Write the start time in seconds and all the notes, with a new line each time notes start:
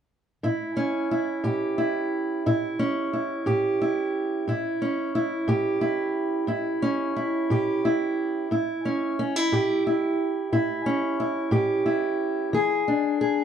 0.43 A2 E4
0.77 C#4
1.11 E4
1.44 A2 G4
1.78 E4
2.46 A2 E4
2.79 C#4
3.13 E4
3.46 A2 G4
3.81 E4
4.47 A2 E4
4.82 C#4
5.15 E4
5.48 A2 G4
5.81 E4
6.47 A2 E4
6.82 C#4
7.16 E4
7.50 A2 G4
7.85 E4
8.51 A2 E4
8.85 C#4
9.19 C#4
9.36 E4
9.52 A2 G4
9.87 E4
10.52 A2 E4
10.86 C#4
11.20 E4
11.51 A2 G4
11.86 E4
12.53 E3 G#4
12.88 D4
13.21 G#4